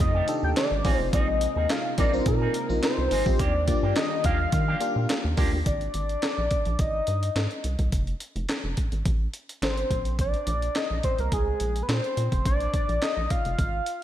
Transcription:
Already playing: string machine C3 D#3 A3 F4
0.00 analog synth bass F2, analog synth lead D#5, muted clean electric guitar stroke, kick, closed hi-hat
0.14 clean electric guitar D#3 A3 D4 G4
0.28 fm electric piano D4 D#4 G4 A4, muted clean electric guitar stroke, closed hi-hat
0.43 analog synth bass D#2, analog synth lead G5, muted clean electric guitar stroke
0.56 analog synth lead D5, snare, clap, closed hi-hat
0.71 analog synth bass G#1, muted clean electric guitar stroke
0.84 analog synth bass A#1, string machine C3 G#3 A#3 D#4, clean electric guitar F3 C4 D#4 G#4, fm electric piano C4 D4 F4 G#4, kick, open hi-hat
0.91 fm electric piano D#4
0.98 analog synth bass F1, analog synth lead C5, muted clean electric guitar stroke
1.13 analog synth bass A#1, clean electric guitar F3 C4 D#4 G#4, analog synth lead D#5, kick, closed hi-hat
1.28 muted clean electric guitar stroke
1.41 muted clean electric guitar stroke, closed hi-hat
1.56 analog synth bass D#2, clean electric guitar F3 C4 D#4 G#4
1.69 analog synth lead F5, snare, clap, closed hi-hat
1.85 muted clean electric guitar stroke
1.98 analog synth bass A#1, clean electric guitar F3 C4 D#4 G#4, fm electric piano C4 D#4 F4 A#4, analog synth lead D5, kick, closed hi-hat
2.13 fm electric piano C4 D4 F4 A#4, analog synth lead C5, muted clean electric guitar stroke
2.20 fm electric piano D#4
2.26 analog synth bass A#2, analog synth lead A#4, muted clean electric guitar stroke, kick, closed hi-hat
2.41 clean electric guitar F3 C4 D#4 G#4
2.54 muted clean electric guitar stroke, closed hi-hat
2.69 analog synth bass A#1, fm electric piano C4 D#4 F4 A#4, muted clean electric guitar stroke
2.83 analog synth lead C5, snare, clap, closed hi-hat
2.98 analog synth bass C2, muted clean electric guitar stroke
3.11 analog synth bass G#1, clean electric guitar F3 C4 D#4 G#4, open hi-hat
3.26 analog synth bass A#1, fm electric piano C4 D#4 F4 G4, muted clean electric guitar stroke, kick
3.39 analog synth bass D#2, string machine D#3 G3 D4 F4, clean electric guitar F3 A#3 D4 G4, analog synth lead D5, kick, closed hi-hat
3.54 muted clean electric guitar stroke
3.67 fm electric piano A#3 D4 F4 G4, muted clean electric guitar stroke, kick, closed hi-hat
3.83 analog synth bass G2, clean electric guitar F3 A#3 D4 G4
3.91 analog synth lead D5
3.96 analog synth lead D#5, snare, clap, closed hi-hat
4.11 muted clean electric guitar stroke
4.24 analog synth bass D#2, clean electric guitar F3 A#3 D4 G4, analog synth lead F5, kick, closed hi-hat
4.40 muted clean electric guitar stroke
4.52 analog synth bass D#3, analog synth lead F5, muted clean electric guitar stroke, kick, closed hi-hat
4.68 clean electric guitar F3 A#3 D4 G4
4.80 fm electric piano A#3 D4 F4 G4, closed hi-hat
4.96 analog synth bass A#2, muted clean electric guitar stroke
5.09 snare, clap, closed hi-hat
5.25 analog synth bass D#2, muted clean electric guitar stroke
5.37 analog synth bass D2, clean electric guitar F3 A#3 D4 G4, fm electric piano A#3 D4 F4 G4, kick, open hi-hat
5.52 analog synth bass D#2, muted clean electric guitar stroke
5.66 analog synth bass G#1, analog synth lead D5, kick, closed hi-hat
5.81 closed hi-hat
5.94 analog synth bass G#1, closed hi-hat
6.09 closed hi-hat
6.22 snare, clap, closed hi-hat
6.38 analog synth bass A#1
6.51 kick, closed hi-hat
6.65 analog synth bass A#1, closed hi-hat
6.79 analog synth bass G#1, analog synth lead D#5, kick, closed hi-hat
7.07 analog synth bass G2, closed hi-hat
7.23 closed hi-hat
7.36 analog synth bass G#2, snare, clap, closed hi-hat
7.51 closed hi-hat
7.64 analog synth bass C2, closed hi-hat
7.79 analog synth bass C2, kick, closed hi-hat
7.92 analog synth bass F1, kick, closed hi-hat
8.07 closed hi-hat
8.20 closed hi-hat
8.36 analog synth bass F1, closed hi-hat
8.49 snare, clap, closed hi-hat
8.64 analog synth bass F1
8.77 kick, closed hi-hat
8.92 analog synth bass G#1, closed hi-hat
9.05 analog synth bass A1, kick, closed hi-hat
9.34 closed hi-hat
9.49 closed hi-hat
9.62 analog synth bass G#1, analog synth lead C5, snare, clap, closed hi-hat
9.77 closed hi-hat
9.90 analog synth bass A#1, kick, closed hi-hat
10.05 closed hi-hat
10.19 analog synth lead D5, kick, closed hi-hat
10.34 closed hi-hat
10.47 analog synth bass A#1, closed hi-hat
10.62 closed hi-hat
10.75 analog synth lead D#5, snare, clap, closed hi-hat
10.91 analog synth bass A#1
11.03 analog synth lead C5, kick, closed hi-hat
11.18 analog synth bass C2, analog synth lead A#4, closed hi-hat
11.32 analog synth bass C2, analog synth lead G#4, kick, closed hi-hat
11.60 analog synth bass A#1, closed hi-hat
11.76 closed hi-hat
11.83 analog synth lead B4
11.89 analog synth bass A#2, analog synth lead C5, snare, clap, closed hi-hat
12.04 closed hi-hat
12.17 analog synth bass A#2, closed hi-hat
12.32 analog synth bass F1, kick, closed hi-hat
12.45 analog synth bass A#1, analog synth lead D5, kick, closed hi-hat
12.60 closed hi-hat
12.74 kick, closed hi-hat
12.89 analog synth bass A#1, closed hi-hat
13.02 analog synth lead D#5, snare, clap, closed hi-hat
13.17 analog synth bass A#1
13.30 analog synth lead F5, kick, closed hi-hat
13.45 analog synth bass F1, closed hi-hat
13.59 analog synth bass G#1, kick, closed hi-hat
13.86 closed hi-hat

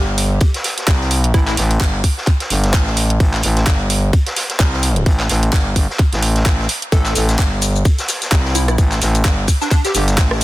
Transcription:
Already playing: fm bass G1
0.18 closed hi-hat, open hi-hat
0.40 kick, closed hi-hat
0.54 snare, closed hi-hat
0.64 snare, closed hi-hat, open hi-hat
0.78 snare, closed hi-hat
0.87 fm bass C2, kick, snare, clap, closed hi-hat
1.01 snare
1.11 closed hi-hat, open hi-hat
1.24 closed hi-hat
1.34 fm bass A1, digital synth lead E4, kick, closed hi-hat
1.47 digital synth lead E4, snare, clap
1.57 fm bass A1, snare, closed hi-hat, open hi-hat
1.71 closed hi-hat
1.80 fm bass G1, kick, snare, clap, closed hi-hat
2.04 kick, closed hi-hat, open hi-hat
2.17 snare
2.27 kick, clap, closed hi-hat
2.40 snare, closed hi-hat
2.50 fm bass G1, closed hi-hat, open hi-hat
2.64 snare, closed hi-hat
2.74 fm bass A1, kick, snare, clap, closed hi-hat
2.87 snare
2.97 closed hi-hat, open hi-hat
3.10 closed hi-hat
3.20 fm bass A1, kick, closed hi-hat
3.34 snare, clap
3.42 fm bass A1, closed hi-hat, open hi-hat
3.57 snare, closed hi-hat
3.66 fm bass G1, kick, snare, clap, closed hi-hat
3.90 closed hi-hat, open hi-hat
4.13 kick, closed hi-hat
4.26 snare, closed hi-hat
4.36 snare, closed hi-hat, open hi-hat
4.50 snare, closed hi-hat
4.60 fm bass C2, kick, snare, clap, closed hi-hat
4.73 snare
4.83 closed hi-hat, open hi-hat
4.96 closed hi-hat
5.06 fm bass A1, kick, closed hi-hat
5.19 snare, clap
5.29 fm bass A1, snare, closed hi-hat, open hi-hat
5.42 closed hi-hat
5.52 fm bass G1, kick, snare, clap, closed hi-hat
5.76 fm bass G1, kick, closed hi-hat, open hi-hat
5.90 snare
5.99 kick, clap, closed hi-hat
6.12 fm bass A1, snare, closed hi-hat
6.22 closed hi-hat, open hi-hat
6.36 snare, closed hi-hat
6.46 fm bass A1, kick, snare, clap, closed hi-hat
6.59 snare
6.69 closed hi-hat, open hi-hat
6.82 closed hi-hat
6.92 fm bass A1, digital synth lead A4, kick, closed hi-hat, shaker
7.06 snare, clap, shaker
7.15 fm bass A1, closed hi-hat, open hi-hat, shaker
7.29 snare, closed hi-hat, shaker
7.39 fm bass G1, kick, snare, clap, closed hi-hat, shaker
7.62 closed hi-hat, open hi-hat, shaker
7.76 shaker
7.85 kick, closed hi-hat, shaker
7.99 snare, closed hi-hat, shaker
8.08 snare, closed hi-hat, open hi-hat, shaker
8.22 snare, closed hi-hat, shaker
8.31 fm bass C2, kick, snare, clap, closed hi-hat, shaker
8.45 snare
8.55 digital synth lead E4, closed hi-hat, open hi-hat, shaker
8.68 digital synth lead E4, cross-stick, closed hi-hat, shaker
8.78 fm bass A1, kick, closed hi-hat, shaker
8.92 snare, clap, shaker
9.01 fm bass A1, snare, closed hi-hat, open hi-hat, shaker
9.15 closed hi-hat, shaker
9.24 fm bass G1, kick, snare, clap, closed hi-hat, shaker
9.48 kick, closed hi-hat, open hi-hat, shaker
9.61 digital synth lead D4, snare, shaker
9.71 digital synth lead D4, kick, clap, closed hi-hat, shaker
9.85 digital synth lead G4, snare, closed hi-hat, shaker
9.95 fm bass G1, digital synth lead G4, closed hi-hat, open hi-hat, shaker
10.08 snare, closed hi-hat, shaker
10.17 fm bass A1, kick, snare, clap, closed hi-hat, shaker
10.31 cross-stick, snare

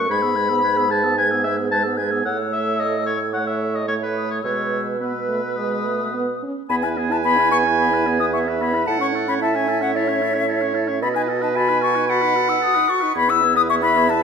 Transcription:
Already playing: oboe C#6
0.09 bassoon G#2, french horn G#3, clarinet B4, oboe B5, flute G#6
0.22 french horn B3, clarinet G#4, flute E6
0.36 french horn G#3, clarinet B4, flute G#6
0.49 french horn B3, clarinet G#4, flute E6
0.63 french horn G#3, clarinet B4, flute G#6
0.77 french horn B3, clarinet G#4, flute E6
0.90 french horn G#3, clarinet B4, oboe A5, flute G#6
1.04 french horn B3, clarinet G#4, flute E6
1.17 french horn G#3, clarinet B4, oboe G#5, flute G#6
1.30 french horn B3, clarinet G#4, flute E6
1.44 french horn G#3, clarinet B4, oboe E5, flute G#6
1.57 french horn B3, clarinet G#4, flute E6
1.70 french horn G#3, clarinet B4, oboe A5, flute G#6
1.83 french horn B3, clarinet G#4, flute E6
1.97 french horn G#3, clarinet B4, oboe G#5, flute G#6
2.11 french horn B3, clarinet G#4, flute E6
2.24 bassoon A2, french horn A3, clarinet C#5, oboe F#5, flute E6
2.53 oboe E5
2.80 oboe D#5
3.06 oboe C#5
3.33 french horn A3, clarinet C#5, oboe F#5, flute C#6
3.47 oboe E5
3.75 oboe D#5
3.88 french horn A3, oboe C#5, clarinet C#5, flute C#6
4.03 oboe B4
4.16 flute D#6
4.31 oboe C#5
4.44 bassoon B2, french horn G#3, clarinet B4, oboe C#5, flute E6
5.00 french horn B3, clarinet B4, oboe B4, flute E6
5.29 french horn A3
5.56 french horn G#3, clarinet B4, flute D#6
5.85 french horn A3
6.14 french horn B3
6.43 french horn C#4
6.70 bassoon E2, french horn B3, oboe G#4, clarinet G#5, flute B5
6.82 french horn E4, oboe B4, flute G#5
6.97 french horn B3, oboe G#4
7.11 french horn E4, oboe B4, flute A5
7.24 french horn B3, oboe G#4, flute B5
7.38 french horn E4, oboe B4
7.51 french horn B3, oboe G#4, flute C#6
7.65 french horn E4, oboe B4
7.78 french horn B3, oboe G#4, flute B5
7.92 french horn E4, oboe B4
8.07 french horn B3, oboe G#4
8.20 french horn E4, oboe B4, flute D#6
8.33 french horn B3, oboe G#4, clarinet E5, flute C#6
8.47 french horn E4, oboe B4
8.60 french horn B3, oboe G#4, flute B5
8.74 french horn E4, oboe B4
8.87 bassoon A2, french horn E4, oboe A4, clarinet F#5, flute A5
9.00 french horn C#4, oboe C#5, flute C#6
9.13 french horn E4, oboe A4
9.28 french horn C#4, oboe C#5, flute B5
9.41 french horn E4, oboe A4, clarinet E5, flute A5
9.55 french horn C#4, oboe C#5, flute G#5
9.68 french horn E4, oboe A4
9.82 french horn C#4, oboe C#5, flute F#5
9.95 french horn E4, oboe A4, clarinet C#5, flute E5
10.08 french horn C#4, oboe C#5
10.22 french horn E4, oboe A4
10.34 french horn C#4, oboe C#5
10.48 french horn E4, oboe A4, clarinet C#5
10.62 french horn C#4, oboe C#5
10.74 french horn E4, oboe A4
10.88 french horn C#4, oboe C#5
11.02 bassoon B2, french horn F#4, oboe A4, clarinet D#5, flute B5
11.15 french horn D#4, oboe B4, flute G#5
11.29 french horn F#4, oboe A4
11.42 french horn D#4, oboe B4, flute A5
11.55 french horn F#4, oboe A4, clarinet G#5, flute B5
11.69 french horn D#4, oboe B4
11.82 french horn F#4, oboe A4, flute C#6
11.95 french horn D#4, oboe B4
12.09 french horn F#4, oboe A4, clarinet F#5, flute B5
12.22 french horn D#4, oboe B4
12.35 french horn F#4, oboe A4
12.48 french horn D#4, oboe B4, flute E6
12.61 french horn F#4, oboe A4, flute D#6
12.74 french horn D#4, oboe B4
12.88 french horn F#4, oboe A4, flute C#6
13.01 french horn D#4, oboe B4
13.15 bassoon E2, french horn B3, oboe G#4, flute B5
13.29 french horn E4, oboe B4, flute E6
13.43 french horn B3, oboe G#4
13.55 french horn E4, oboe B4, flute D#6
13.69 french horn B3, oboe G#4, clarinet E5, flute C#6
13.82 french horn E4, oboe B4, flute B5
13.96 french horn B3, oboe G#4
14.09 french horn E4, oboe B4, flute A5

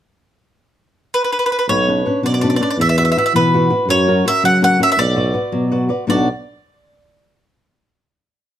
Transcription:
1.14 mandolin B4
1.24 mandolin B4
1.32 mandolin B4
1.39 mandolin B4
1.46 mandolin B4
1.52 mandolin B4
1.59 mandolin B4
1.68 tuba B1, nylon-string guitar B2, mandolin C#5
1.88 nylon-string guitar C#4 D4 B4
2.06 nylon-string guitar C#4 D4 B4
2.23 tuba B2, nylon-string guitar F#3, mandolin D5
2.34 mandolin D5
2.41 nylon-string guitar C#4 D4 B4, mandolin D5
2.50 mandolin D5
2.56 nylon-string guitar C#4, mandolin D5
2.61 nylon-string guitar D4 B4, mandolin D5
2.70 mandolin D5
2.77 tuba E2, nylon-string guitar E3, mandolin E5
2.89 mandolin E5
2.98 nylon-string guitar E4 F#4 B4, mandolin E5
3.05 mandolin E5
3.12 mandolin E5
3.17 nylon-string guitar E4 F#4 B4, mandolin E5
3.26 mandolin E5
3.34 nylon-string guitar B2, tuba E3, mandolin B4
3.54 nylon-string guitar E4 F#4 B4
3.70 nylon-string guitar E4 F#4 B4
3.87 tuba F#2, nylon-string guitar F#3, mandolin C#5
4.08 nylon-string guitar C#4 F#4 A#4
4.25 nylon-string guitar C#4 F#4 A#4, mandolin E5
4.43 nylon-string guitar C#3, tuba F#3, mandolin F#5
4.62 nylon-string guitar C#4 F#4 A#4, mandolin F#5
4.79 nylon-string guitar C#4 F#4 A#4, mandolin E5
4.92 mandolin E5
4.97 tuba B1, nylon-string guitar B3, mandolin D5
5.16 nylon-string guitar F#4 B4 D5
5.33 nylon-string guitar F#4 B4 D5
5.52 tuba B2, nylon-string guitar F#3
5.72 nylon-string guitar F#4 B4 D5
5.89 nylon-string guitar F#4 B4 D5
6.07 tuba B1, nylon-string guitar B2 F#3 B3 D4 F#4, mandolin D5

